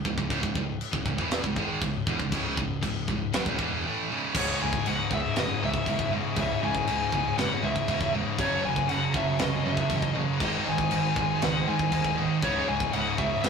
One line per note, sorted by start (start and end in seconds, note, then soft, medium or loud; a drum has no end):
0.05 0.17 C#1 medium
0.05 0.17 C#2 medium
0.05 0.18 G#2 medium
0.05 kick medium
0.18 0.30 C#1 medium
0.18 0.29 C#2 medium
0.18 0.30 G#2 medium
0.18 kick medium
0.30 0.42 C#1 medium
0.30 0.40 C#2 loud
0.30 0.41 G#2 loud
0.30 kick medium
0.30 china medium
0.42 0.55 C#1 medium
0.42 0.54 C#2 medium
0.42 0.54 G#2 medium
0.42 kick medium
0.55 0.79 C#1 medium
0.55 0.76 C#2 medium
0.55 0.76 G#2 medium
0.55 kick medium
0.81 china medium
0.92 1.06 C#1 medium
0.92 1.04 C#2 medium
0.92 1.05 G#2 medium
0.92 kick medium
1.06 1.18 C#1 medium
1.06 1.17 C#2 medium
1.06 1.17 G#2 medium
1.06 kick medium
1.18 1.43 E1 loud
1.18 1.43 E2 loud
1.18 1.43 B2 loud
1.18 1.43 E3 loud
1.18 kick medium
1.31 snare loud
1.31 china medium
1.43 1.56 C#1 medium
1.43 1.55 C#2 medium
1.43 1.54 G#2 medium
1.43 kick medium
1.56 1.80 G#1 medium
1.56 1.81 G#2 medium
1.56 1.81 D#3 loud
1.56 1.81 G#3 loud
1.56 kick medium
1.82 2.06 C#1 medium
1.82 2.02 C#2 medium
1.82 2.02 G#2 medium
1.82 kick medium
1.82 china medium
2.07 2.19 E1 loud
2.07 2.18 E2 medium
2.07 2.18 B2 loud
2.07 kick loud
2.18 2.32 C#1 medium
2.18 2.30 C#2 medium
2.18 2.30 G#2 medium
2.18 kick medium
2.31 2.56 C#1 loud
2.31 2.56 C#2 medium
2.31 2.56 G#2 medium
2.31 2.57 C#3 medium
2.31 kick loud
2.31 china medium
2.57 2.82 C#1 medium
2.57 2.78 C#2 medium
2.57 2.79 G#2 medium
2.57 kick loud
2.81 3.07 C#1 medium
2.81 3.03 C#2 medium
2.81 3.03 G#2 medium
2.81 kick medium
2.81 china medium
3.08 3.32 C#1 medium
3.08 3.28 C#2 medium
3.08 3.29 G#2 medium
3.08 kick medium
3.33 3.46 B1 loud
3.33 3.45 B2 medium
3.33 3.46 F#3 loud
3.33 snare loud
3.33 china medium
3.46 3.58 C#1 medium
3.46 3.58 C#2 medium
3.46 3.59 G#2 loud
3.46 kick loud
3.58 3.82 E1 loud
3.58 3.83 E2 medium
3.58 3.84 B2 loud
3.58 3.84 E3 loud
3.58 kick loud
3.85 4.09 A2 loud
3.85 4.09 E3 loud
3.85 4.10 A3 loud
4.09 4.34 C#2 medium
4.09 4.35 G#2 medium
4.09 4.35 C#3 medium
4.35 4.52 C#1 loud
4.35 4.44 C#2 medium
4.35 4.45 G#2 medium
4.35 8.35 C#3 medium
4.35 4.60 C#3 loud
4.35 8.35 G#3 medium
4.35 8.35 C#4 medium
4.35 8.35 E4 loud
4.35 4.60 C#5 loud
4.35 kick loud
4.35 crash loud
4.35 crash medium
4.44 4.52 C#2 medium
4.44 4.52 G#2 medium
4.52 4.58 C#2 medium
4.52 4.60 G#2 medium
4.59 4.78 C#1 loud
4.59 4.66 C#2 medium
4.59 4.67 G#2 medium
4.59 4.86 C#3 loud
4.59 4.87 G#5 loud
4.67 4.75 C#2 medium
4.67 4.75 G#2 medium
4.73 4.82 C#2 medium
4.73 4.83 G#2 medium
4.73 kick medium
4.83 4.90 C#2 medium
4.83 4.91 G#2 medium
4.83 5.11 C#3 loud
4.83 crash medium
4.87 5.04 C#1 medium
4.87 4.97 C#2 medium
4.87 4.98 G#2 medium
4.87 5.12 F#5 loud
4.97 5.05 C#2 medium
4.97 5.06 G#2 medium
5.05 5.13 C#2 medium
5.05 5.14 G#2 medium
5.11 5.28 C#1 medium
5.11 5.19 C#2 medium
5.11 5.21 G#2 medium
5.11 5.35 C#3 medium
5.11 5.38 E5 loud
5.11 kick medium
5.20 5.27 C#2 medium
5.20 5.28 G#2 medium
5.27 5.35 C#2 medium
5.27 5.36 G#2 medium
5.36 5.54 F#1 loud
5.36 5.42 C#2 medium
5.36 5.45 G#2 medium
5.36 5.60 C#3 loud
5.36 5.64 D#5 medium
5.36 snare loud
5.36 crash medium
5.43 5.50 C#2 medium
5.43 5.51 G#2 medium
5.50 5.58 C#2 medium
5.50 5.59 G#2 medium
5.58 5.65 C#2 medium
5.58 5.67 G#2 medium
5.58 5.86 C#3 loud
5.63 5.79 C#2 loud
5.63 5.73 C#2 medium
5.63 6.10 E5 medium
5.67 5.75 G#2 medium
5.74 5.81 C#2 medium
5.74 5.82 G#2 medium
5.74 kick medium
5.82 5.89 C#2 medium
5.82 5.90 G#2 medium
5.86 6.21 F#1 loud
5.86 5.97 C#2 medium
5.86 6.11 G#2 loud
5.86 6.11 C#3 medium
5.86 kick medium
5.86 crash medium
5.91 5.98 G#2 medium
5.98 6.04 C#2 medium
5.98 6.04 G#2 medium
5.98 kick medium
6.05 6.11 C#2 medium
6.05 6.12 G#2 medium
6.11 6.19 C#2 medium
6.11 6.20 G#2 medium
6.11 6.35 C#3 loud
6.20 6.26 C#2 medium
6.20 6.28 G#2 medium
6.27 6.34 C#2 medium
6.27 6.36 G#2 medium
6.36 6.54 C#1 loud
6.36 6.44 C#2 medium
6.36 6.45 G#2 medium
6.36 6.61 C#3 loud
6.36 6.65 E5 loud
6.36 kick loud
6.36 crash medium
6.44 6.51 C#2 medium
6.44 6.52 G#2 medium
6.52 6.58 C#2 medium
6.52 6.60 G#2 medium
6.59 6.66 C#2 medium
6.59 6.68 G#2 medium
6.59 6.86 C#3 loud
6.63 6.80 C#1 medium
6.63 6.74 C#2 medium
6.63 7.35 G#5 loud
6.68 6.75 G#2 medium
6.75 6.83 C#2 medium
6.75 6.83 G#2 medium
6.75 kick medium
6.83 6.91 C#2 medium
6.83 6.91 G#2 medium
6.83 7.11 C#3 loud
6.87 7.06 C#1 loud
6.87 6.98 C#2 medium
6.87 crash medium
6.92 6.99 G#2 medium
6.99 7.05 C#2 medium
6.99 7.07 G#2 medium
7.06 7.14 C#2 medium
7.06 7.14 G#2 medium
7.12 7.30 C#1 medium
7.12 7.22 C#2 medium
7.12 7.22 G#2 medium
7.12 7.37 C#3 loud
7.12 kick medium
7.22 7.29 C#2 medium
7.22 7.30 G#2 medium
7.30 7.37 C#2 medium
7.30 7.38 G#2 medium
7.38 7.56 F#1 loud
7.38 7.45 C#2 medium
7.38 7.46 G#2 medium
7.38 7.62 C#3 loud
7.38 7.64 F#5 loud
7.38 snare loud
7.38 crash medium
7.45 7.52 C#2 medium
7.45 7.54 G#2 medium
7.53 7.60 C#2 medium
7.53 7.61 G#2 medium
7.61 7.69 C#2 medium
7.61 7.80 C#2 loud
7.61 7.69 G#2 medium
7.61 7.87 C#3 loud
7.61 8.11 E5 medium
7.69 7.76 C#2 medium
7.69 7.76 G#2 medium
7.76 7.84 C#2 medium
7.76 7.84 G#2 medium
7.76 kick medium
7.84 7.91 C#2 medium
7.84 7.92 G#2 medium
7.84 8.12 C#3 loud
7.84 kick medium
7.89 8.23 E1 loud
7.89 7.99 C#2 medium
7.89 crash medium
7.93 7.99 G#2 medium
8.00 8.07 C#2 medium
8.00 8.07 G#2 medium
8.00 kick medium
8.08 8.15 C#2 medium
8.08 8.16 G#2 medium
8.12 8.23 C#2 medium
8.12 8.37 G#2 medium
8.12 8.37 C#3 medium
8.17 8.23 G#2 medium
8.23 8.31 C#2 medium
8.23 8.31 G#2 medium
8.31 8.38 C#2 medium
8.31 8.38 G#2 medium
8.38 8.56 F#1 loud
8.38 8.46 F#2 medium
8.38 8.46 C#3 medium
8.38 10.38 F#3 medium
8.38 8.63 F#3 loud
8.38 10.39 C#4 medium
8.38 10.39 G#4 medium
8.38 10.39 A4 loud
8.38 8.66 C#5 loud
8.38 kick loud
8.38 crash medium
8.46 8.54 F#2 medium
8.46 8.54 C#3 medium
8.54 8.62 F#2 medium
8.54 8.62 C#3 medium
8.62 8.81 F#1 loud
8.62 8.69 F#2 medium
8.62 8.69 C#3 medium
8.62 8.88 F#3 loud
8.62 8.89 G#5 loud
8.70 8.77 F#2 medium
8.70 8.77 C#3 medium
8.76 8.85 F#2 medium
8.76 8.85 C#3 medium
8.76 kick medium
8.85 8.93 F#2 medium
8.85 8.93 C#3 medium
8.85 crash medium
8.89 9.06 F#1 loud
8.89 9.13 F#3 loud
8.89 9.16 F#5 loud
8.93 9.00 F#2 medium
8.93 9.00 C#3 medium
9.01 9.08 F#2 medium
9.01 9.08 C#3 medium
9.09 9.17 F#2 medium
9.09 9.16 C#3 medium
9.14 9.31 F#1 loud
9.14 9.23 F#2 medium
9.14 9.24 C#3 medium
9.14 9.39 F#3 loud
9.14 9.41 E5 medium
9.14 kick medium
9.23 9.31 F#2 medium
9.23 9.32 C#3 medium
9.32 9.39 F#2 medium
9.32 9.39 C#3 medium
9.39 9.57 C2 loud
9.39 9.47 F#2 medium
9.39 9.48 C#3 medium
9.39 9.63 F#3 loud
9.39 9.65 D#5 loud
9.39 snare loud
9.39 crash medium
9.48 9.55 F#2 medium
9.48 9.54 C#3 medium
9.55 9.63 F#2 medium
9.55 9.63 C#3 medium
9.63 9.70 F#2 medium
9.63 9.82 F#2 medium
9.63 9.71 C#3 medium
9.63 9.88 F#3 loud
9.67 9.78 F#2 medium
9.67 10.01 E5 medium
9.71 9.78 C#3 medium
9.77 9.86 F#2 medium
9.77 9.86 C#3 medium
9.77 kick medium
9.87 10.24 A1 loud
9.87 9.93 F#2 medium
9.87 9.93 C#3 medium
9.87 10.14 F#3 loud
9.87 kick medium
9.87 crash medium
9.94 10.01 F#2 medium
9.94 10.01 C#3 medium
10.01 10.10 F#2 medium
10.01 10.09 C#3 medium
10.01 10.13 D#5 medium
10.01 kick medium
10.10 10.17 F#2 medium
10.10 10.18 C#3 medium
10.15 10.25 F#2 medium
10.15 10.25 C#3 medium
10.15 10.39 F#3 loud
10.25 10.32 F#2 medium
10.25 10.33 C#3 medium
10.32 10.40 F#2 medium
10.32 10.41 C#3 medium
10.40 10.58 G#1 loud
10.40 10.48 G#2 medium
10.40 10.49 D#3 medium
10.40 10.66 G#3 loud
10.40 10.65 G#3 loud
10.40 12.41 G#3 medium
10.40 12.41 D#4 medium
10.40 13.49 G#4 medium
10.40 12.41 C5 loud
10.40 10.68 D#5 loud
10.40 kick loud
10.40 crash medium
10.49 10.56 G#2 medium
10.49 10.56 D#3 medium
10.56 10.64 G#2 medium
10.56 10.64 D#3 medium
10.64 10.84 G#1 medium
10.64 10.72 G#2 medium
10.64 10.72 D#3 medium
10.64 10.91 G#3 loud
10.69 10.80 G#2 medium
10.69 10.80 D#3 medium
10.69 11.44 G#5 loud
10.78 10.87 G#2 medium
10.78 10.87 D#3 medium
10.78 kick medium
10.87 10.94 G#2 medium
10.87 10.95 D#3 medium
10.87 11.16 G#3 loud
10.87 crash medium
10.93 11.09 G#1 loud
10.93 11.02 G#2 medium
10.93 11.03 D#3 medium
11.03 11.10 G#2 medium
11.03 11.11 D#3 medium
11.11 11.18 G#2 medium
11.11 11.18 D#3 medium
11.16 11.34 G#1 loud
11.16 11.25 G#2 medium
11.16 11.26 D#3 medium
11.16 11.42 G#3 loud
11.16 kick medium
11.26 11.33 G#2 medium
11.26 11.34 D#3 medium
11.33 11.40 G#2 medium
11.33 11.42 D#3 medium
11.41 11.60 C#2 loud
11.41 11.48 G#2 medium
11.41 11.50 D#3 medium
11.41 11.66 G#3 loud
11.41 11.67 F#5 loud
11.41 snare loud
11.41 crash medium
11.49 11.56 G#2 medium
11.49 11.58 D#3 medium
11.57 11.64 G#2 medium
11.57 11.66 D#3 medium
11.64 11.72 G#2 medium
11.64 11.73 D#3 medium
11.64 11.92 G#3 loud
11.68 11.85 G#2 loud
11.68 11.79 G#2 medium
11.68 12.15 G#5 medium
11.73 11.81 D#3 medium
11.79 11.87 G#2 medium
11.79 11.89 D#3 medium
11.79 kick medium
11.88 12.26 D#1 loud
11.88 11.95 G#2 medium
11.88 11.96 D#3 medium
11.92 12.17 G#3 loud
11.92 kick medium
11.92 crash medium
11.96 12.03 G#2 medium
11.96 12.04 D#3 medium
12.04 12.11 G#2 medium
12.04 12.12 D#3 medium
12.04 kick medium
12.11 12.19 G#2 medium
12.11 12.19 D#3 medium
12.18 12.25 G#2 medium
12.18 12.27 D#3 medium
12.18 12.41 G#3 medium
12.26 12.33 G#2 medium
12.26 12.34 D#3 medium
12.34 12.42 G#2 medium
12.34 12.42 D#3 medium
12.41 12.60 C#1 loud
12.41 12.50 C#2 medium
12.41 12.51 G#2 medium
12.41 12.68 C#3 loud
12.41 12.67 C#3 loud
12.41 13.49 C#4 medium
12.41 12.69 C#5 loud
12.41 13.49 C#5 medium
12.41 13.49 E5 medium
12.41 kick loud
12.41 crash medium
12.51 12.57 C#2 soft
12.51 12.59 G#2 medium
12.58 12.65 C#2 medium
12.58 12.66 G#2 medium
12.65 12.72 C#2 medium
12.65 12.74 G#2 medium
12.65 12.93 C#3 loud
12.65 12.93 G#5 loud
12.70 12.86 C#1 loud
12.70 12.80 C#2 medium
12.74 12.81 G#2 medium
12.80 12.88 C#2 medium
12.80 12.89 G#2 medium
12.80 kick medium
12.89 12.96 C#2 medium
12.89 12.97 G#2 medium
12.93 13.12 C#1 loud
12.93 13.17 C#2 loud
12.93 13.18 C#3 loud
12.93 13.19 F#5 loud
12.93 crash medium
12.97 13.05 C#2 medium
12.97 13.05 G#2 medium
13.05 13.11 C#2 medium
13.05 13.13 G#2 medium
13.12 13.20 C#2 medium
13.12 13.21 G#2 medium
13.18 13.36 C#1 loud
13.18 13.27 C#2 medium
13.18 13.28 G#2 medium
13.18 13.42 C#3 medium
13.18 13.41 E5 loud
13.18 kick loud
13.28 13.35 C#2 medium
13.28 13.35 G#2 medium
13.35 13.43 C#2 medium
13.35 13.43 G#2 medium
13.42 13.49 F#1 loud
13.42 13.49 C#2 medium
13.42 13.49 G#2 medium
13.42 13.49 C#3 loud
13.42 13.49 D#5 loud
13.42 snare loud
13.42 crash medium